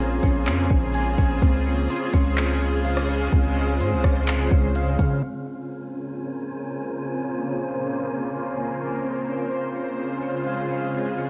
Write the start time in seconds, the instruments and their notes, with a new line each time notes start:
Already playing: 808-style bass A#1, ambient pad C#3 A#3 F4 G#4 C5, synth keys C4 C#4 G#5, synth texture C#4 C5 G#5
0.00 synth keys C5
0.23 808-style bass A#1, synth keys C#4, kick, closed hi-hat
0.47 808-style bass F2, synth keys C4, clap, closed hi-hat
0.71 808-style bass A#1, synth keys C#4, kick
0.94 synth keys G#5, closed hi-hat
1.18 808-style bass A#1, synth keys C#4, kick, closed hi-hat
1.42 808-style bass C#2, ambient pad C#3 G#3 C5, synth keys C4, synth texture C5 F5, kick, closed hi-hat
1.66 synth keys C#4
1.90 synth keys C5, closed hi-hat
2.14 808-style bass C#2, synth keys C#4, kick, closed hi-hat
2.37 synth keys C4, clap, closed hi-hat
2.61 synth keys C#4
2.85 synth keys F5, closed hi-hat
2.97 cross-stick
3.09 synth keys C#4, closed hi-hat
3.33 808-style bass C#2, synth keys C4, kick, closed hi-hat
3.56 synth keys C#4
3.80 808-style bass G#2, synth keys C5, closed hi-hat
3.92 808-style bass C#2
4.04 808-style bass C#2, synth keys C#4, kick, cross-stick, closed hi-hat
4.16 closed hi-hat
4.28 synth keys C4, clap, closed hi-hat
4.51 808-style bass C#2, synth keys C#4, kick
4.75 synth keys F5, closed hi-hat
4.99 808-style bass C#3, synth keys C#4, kick, closed hi-hat
5.23 ambient pad C#3 A#3 F4 G#4 C5, synth keys C4, synth texture C#4 A#4 C5 G#5
5.47 synth keys C#4
5.71 synth keys C5
5.94 synth keys C#4
6.18 synth keys C4
6.43 synth keys C#4
6.66 synth keys G#5
6.90 synth keys C#4
7.14 synth keys C4, ambient pad A#4
7.37 synth keys C#4
7.61 synth keys C5
7.85 synth keys C#4
8.09 synth keys C4
8.33 synth keys C#4
8.57 synth keys G#5
8.80 synth keys C#4
9.04 ambient pad C#3 G#3 F4 G#4, synth keys C4, synth texture C5 F5
9.28 synth keys C#4
9.52 synth keys C5
9.76 synth keys C#4
9.99 synth keys C4
10.23 synth keys C#4
10.47 synth keys F5
10.71 synth keys C#4
10.94 synth keys C4, synth texture A#4
11.18 synth keys C#4